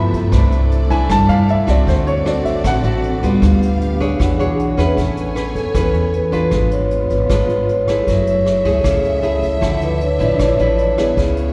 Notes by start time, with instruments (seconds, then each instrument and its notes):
Already playing: upright bass G2, nylon-string guitar F3 B3 E4, string section A3 G4 B4 E5, vibraphone F4 A4 B4 E5
0.13 upright bass G2, kick, closed hi-hat
0.27 vibraphone D4 A4 C5, string section E4
0.32 upright bass C2, nylon-string guitar C3 A3 D4 E4, string section D5, vibraphone E5, kick, cross-stick, closed hi-hat
0.52 closed hi-hat
0.72 closed hi-hat
0.90 nylon-string guitar A3 D4 E4, grand piano G#5, kick, closed hi-hat
1.09 upright bass G2, nylon-string guitar G3, grand piano A5, kick, cross-stick, closed hi-hat
1.29 upright bass G2, nylon-string guitar A3 D4 E4, grand piano F5, closed hi-hat
1.49 grand piano E5, closed hi-hat
1.67 upright bass C2, nylon-string guitar A3 C4 F#4, grand piano D5, kick, cross-stick, closed hi-hat
1.83 upright bass D2, nylon-string guitar D3, string section C4, vibraphone D4 A4, kick
1.88 string section F#4 D5, vibraphone C5 F#5, grand piano C5, closed hi-hat
2.07 grand piano C#5, closed hi-hat
2.25 nylon-string guitar A3 C4 F#4, grand piano D5, cross-stick, closed hi-hat
2.45 grand piano E5, kick, closed hi-hat
2.64 upright bass A1, nylon-string guitar A2, grand piano F#5, kick, cross-stick, closed hi-hat
2.83 upright bass A1, nylon-string guitar A3 C4 F#4, closed hi-hat
3.03 closed hi-hat
3.23 upright bass D2, nylon-string guitar G3 B3 F4, kick, closed hi-hat
3.39 upright bass D2, nylon-string guitar D3, string section B3 G4 F5, vibraphone D4 G4 B4, kick, cross-stick, closed hi-hat
3.45 vibraphone F5
3.62 closed hi-hat
3.81 closed hi-hat
4.00 nylon-string guitar D4 G#4 C#5, kick, closed hi-hat
4.15 vibraphone D4 G#4
4.19 upright bass E2, nylon-string guitar E3, string section F#4 G#4, vibraphone C#5 F#5, kick, cross-stick, closed hi-hat
4.39 upright bass B1, nylon-string guitar D4 G#4 C#5, closed hi-hat
4.57 vibraphone F#5, closed hi-hat
4.77 upright bass E2, nylon-string guitar C#4 G#4 B4, vibraphone E5, kick, cross-stick, closed hi-hat
4.97 upright bass A1, nylon-string guitar A3, string section B3 C#5 G#5, kick, closed hi-hat
5.17 closed hi-hat
5.35 nylon-string guitar C#4 G#4 B4, cross-stick, closed hi-hat
5.55 upright bass E2, vibraphone A4, kick, closed hi-hat
5.75 upright bass E2, nylon-string guitar E3 C#4 G#4 B4, kick, cross-stick, closed hi-hat
5.92 upright bass E2, closed hi-hat
6.13 vibraphone B4, closed hi-hat
6.32 nylon-string guitar D4 F4 B4, kick, closed hi-hat
6.51 upright bass G#1, nylon-string guitar G#3, string section B3 F4, kick, cross-stick, closed hi-hat
6.71 vibraphone C#5, closed hi-hat
6.91 closed hi-hat
7.10 upright bass G#1, vibraphone B4, kick, closed hi-hat
7.30 upright bass G#1, nylon-string guitar G#3 D4 F4 B4, kick, cross-stick, closed hi-hat
7.47 upright bass G#1, closed hi-hat
7.69 vibraphone C#5, closed hi-hat
7.88 nylon-string guitar A3 E4 G#4, kick, cross-stick, closed hi-hat
8.07 upright bass F#1, nylon-string guitar F#3, string section A3 G#4 E5, kick, closed hi-hat
8.27 vibraphone C#5, closed hi-hat
8.46 cross-stick, closed hi-hat
8.65 upright bass C#2, nylon-string guitar A3 E4 G#4, kick, closed hi-hat
8.84 upright bass C#2, nylon-string guitar C#3, kick, cross-stick, closed hi-hat
9.03 upright bass C#2, closed hi-hat
9.22 nylon-string guitar A3 E4 G#4, closed hi-hat
9.42 kick, closed hi-hat
9.61 upright bass D2, nylon-string guitar D3 F3 A3 E4, string section D4 E4, kick, cross-stick, closed hi-hat
9.81 vibraphone B4, closed hi-hat
10.01 vibraphone C#5, closed hi-hat
10.19 upright bass A1, nylon-string guitar F3 A3 E4, vibraphone D5, kick, closed hi-hat
10.39 upright bass A1, nylon-string guitar A2, vibraphone C#5, kick, cross-stick, closed hi-hat
10.58 upright bass A1, nylon-string guitar F3 A3 E4, closed hi-hat
10.78 closed hi-hat
10.98 nylon-string guitar B3 E4 G#4, kick, cross-stick, closed hi-hat
11.16 upright bass C#2, nylon-string guitar C#3, string section B3 G#4 C#5, kick, closed hi-hat
11.36 closed hi-hat